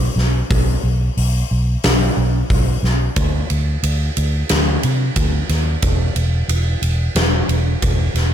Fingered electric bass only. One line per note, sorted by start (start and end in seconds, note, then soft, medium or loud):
0.16 0.41 B1 medium
0.50 0.75 B1 loud
0.84 1.08 B1 medium
1.17 1.42 B1 medium
1.51 1.75 B1 medium
1.85 2.09 B1 loud
2.17 2.41 B1 medium
2.50 2.75 B1 medium
2.83 3.08 B1 medium
3.17 3.42 D2 medium
3.50 3.75 D2 medium
3.83 4.08 D2 medium
4.17 4.42 D2 medium
4.51 4.76 D2 medium
4.84 5.09 C3 medium
5.16 5.42 D2 medium
5.49 5.75 D#2 medium
5.83 6.08 E1 loud
6.16 6.41 E1 medium
6.48 6.74 E1 medium
6.82 7.08 E1 medium
7.15 7.41 E1 medium
7.49 7.74 E1 medium
7.82 8.07 E1 medium
8.14 8.34 E1 medium